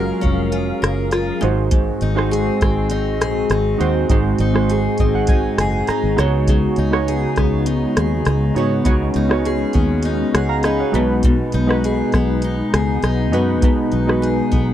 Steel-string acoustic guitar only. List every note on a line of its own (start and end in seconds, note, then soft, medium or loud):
0.00 1.74 F#3 medium
0.00 0.20 C#4 medium
0.00 0.51 F4 medium
0.00 0.81 A#4 medium
0.21 1.47 C#4 medium
0.52 1.11 F4 medium
0.82 1.48 A#4 medium
1.12 1.48 F4 medium
1.41 1.70 G#2 medium
1.71 4.10 G#2 medium
2.02 2.90 D#4 medium
2.31 3.21 G#4 medium
2.62 3.79 C4 medium
2.91 3.52 D#4 medium
3.21 4.70 G#4 medium
3.52 4.40 D#4 medium
3.80 4.99 C4 medium
4.11 6.25 G#2 medium
4.40 5.29 D#4 medium
4.70 5.60 G#4 medium
5.00 6.24 C4 medium
5.30 5.90 D#4 medium
5.60 7.08 G#4 medium
5.90 6.52 D#4 medium
6.19 6.48 C#3 medium
6.49 8.85 C#3 medium
6.78 7.66 D#4 medium
7.08 7.96 G#4 medium
7.38 8.57 B3 medium
7.66 8.27 D#4 medium
7.97 9.45 G#4 medium
8.27 9.15 D#4 medium
8.57 9.74 B3 medium
8.86 11.00 C#3 medium
9.16 10.05 D#4 medium
9.46 10.34 G#4 medium
9.74 12.14 B3 medium
10.05 10.65 D#4 medium
10.34 11.84 G#4 medium
10.65 11.54 D#4 medium
10.95 11.23 B2 medium
11.24 13.63 B2 medium
11.54 12.43 D#4 medium
11.85 12.74 G#4 medium
12.14 13.33 B3 medium
12.44 13.02 D#4 medium
12.74 14.22 G#4 medium
13.04 13.91 D#4 medium
13.34 14.50 B3 medium
13.64 14.74 B2 medium
13.92 14.74 D#4 medium
14.22 14.74 G#4 medium
14.52 14.74 B3 medium